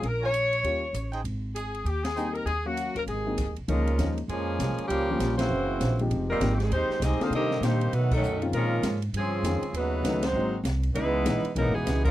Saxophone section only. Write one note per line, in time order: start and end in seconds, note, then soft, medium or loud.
0.05 0.23 A#4 medium
0.25 1.11 C#5 medium
1.55 1.84 G#4 medium
1.87 2.05 G4 medium
2.04 2.35 G#4 medium
2.34 2.46 A#4 medium
2.46 2.64 G#4 loud
2.66 2.96 F#4 loud
2.97 3.02 A#4 medium
3.09 3.54 G#4 medium
3.69 4.15 G#3 medium
3.69 4.14 C#4 medium
3.69 4.15 F4 medium
3.69 4.15 A#4 medium
4.29 4.86 F3 medium
4.29 4.86 A#3 medium
4.29 4.86 C#4 medium
4.29 4.86 G#4 medium
4.88 5.35 F3 medium
4.88 5.34 A#3 medium
4.88 5.34 C#4 medium
4.88 5.34 G4 loud
5.38 5.99 A#3 medium
5.38 5.99 E4 medium
5.38 5.99 F#4 medium
5.38 5.99 C5 loud
6.30 6.54 G3 medium
6.30 6.54 C4 medium
6.30 6.54 D#4 medium
6.30 6.54 A#4 loud
6.55 6.60 G4 medium
6.62 6.73 D#3 medium
6.62 6.73 G3 medium
6.62 6.73 C4 medium
6.62 6.73 G#4 medium
6.73 7.01 G#3 medium
6.73 7.01 D#4 medium
6.73 7.01 G4 medium
6.73 7.01 C5 medium
7.03 7.21 C4 medium
7.03 7.21 G4 medium
7.03 7.21 G#4 medium
7.03 7.21 D#5 medium
7.22 7.33 D#4 medium
7.22 7.34 G#4 medium
7.22 7.33 C5 medium
7.22 7.33 F5 medium
7.34 7.61 C4 medium
7.34 7.61 G4 loud
7.34 7.62 A#4 medium
7.34 7.62 D#5 loud
7.64 7.94 A#3 medium
7.64 7.93 D#4 medium
7.64 7.93 G4 medium
7.64 7.93 C5 medium
7.93 8.12 A3 medium
7.93 8.12 D#4 medium
7.93 8.11 F#4 medium
7.93 8.11 B4 loud
8.14 8.41 F#3 medium
8.14 8.41 C#4 medium
8.14 8.41 D#4 medium
8.14 8.41 A4 medium
8.55 8.99 G#3 medium
8.55 8.99 C#4 medium
8.55 8.99 F4 medium
8.55 8.99 A#4 loud
9.16 9.72 F3 medium
9.16 9.72 C4 medium
9.16 9.72 C#4 medium
9.16 9.72 G#4 loud
9.76 10.25 A3 medium
9.76 10.24 D#4 medium
9.76 10.24 F#4 medium
9.76 10.24 B4 loud
10.25 10.57 G#3 medium
10.25 10.57 D#4 medium
10.25 10.57 F#4 medium
10.25 10.57 C5 medium
10.95 11.52 G#3 medium
10.95 11.52 D#4 medium
10.95 11.52 E4 medium
10.95 11.52 B4 loud
11.58 11.76 F#3 medium
11.58 11.75 B3 medium
11.58 11.74 D#4 medium
11.58 11.75 A#4 loud
11.75 12.06 E3 medium
11.75 12.06 B3 medium
11.75 12.06 D#4 medium
11.75 12.05 G#4 medium
12.05 12.11 G#3 medium
12.05 12.11 C#4 medium
12.05 12.11 F4 medium
12.05 12.11 A#4 loud